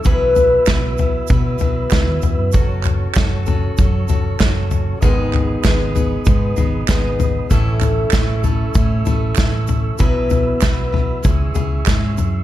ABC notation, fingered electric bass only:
X:1
M:4/4
L:1/16
Q:1/4=96
K:Bmix
V:1 name="Fingered electric bass" clef=bass
B,,,4 B,,,4 B,,2 B,,,2 C,, D,, E,, F,, | F,,,4 F,,,4 F,,2 F,,,2 F,,,4 | G,,,4 G,,,4 G,,2 G,,,2 G,,,4 | A,,,4 A,,,4 A,,2 A,,,2 A,,,4 |
B,,,4 B,,,4 C,,2 C,,2 G,,2 F,,2 |]